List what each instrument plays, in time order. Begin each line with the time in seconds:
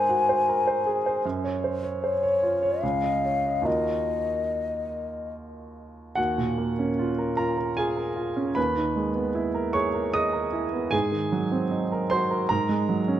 Already playing: grand piano G#2 A#4 C5, flute G#5
0.09 grand piano F#4
0.29 grand piano C5
0.49 grand piano A#4
0.67 grand piano C5
0.86 grand piano G#4
1.06 grand piano C5
1.25 grand piano F#2
1.44 grand piano C#5
1.64 grand piano C5
1.83 grand piano C#5
2.01 grand piano C5, flute C#5
2.23 grand piano C#5
2.43 grand piano F4
2.62 grand piano C#5
2.82 grand piano C#2, flute F5
3.04 grand piano D#5
3.26 grand piano C#5
3.46 grand piano D#5
3.62 grand piano D#2 F4 F#4 A#4 D#5
3.66 flute D#5
6.15 grand piano D#2 F#4 F#5
6.38 grand piano A#2
6.58 grand piano A#3
6.79 grand piano C#4
6.99 grand piano F4
7.18 grand piano A#4
7.37 grand piano F4 A#4 A#5
7.58 grand piano A#4
7.77 grand piano F4 G#4 G#5
7.96 grand piano A#4
8.16 grand piano F4
8.36 grand piano C#4
8.55 grand piano D#2 B4 B5
8.77 grand piano D#3
8.96 grand piano G#3
9.16 grand piano B3
9.35 grand piano E4
9.54 grand piano A#4
9.73 grand piano G#4 C#5 C#6
9.94 grand piano A#4
10.14 grand piano G#4 D#5 D#6
10.33 grand piano A#4
10.53 grand piano E4
10.73 grand piano B3
10.91 grand piano G#2 G#4 G#5
11.12 grand piano D#3
11.32 grand piano F#3
11.52 grand piano C4
11.71 grand piano D#4
11.92 grand piano A#4
12.10 grand piano F#4 C5 C6
12.31 grand piano A#4
12.49 grand piano G#2 A#4 A#5
12.69 grand piano G#3
12.89 grand piano F#3
13.08 grand piano C#4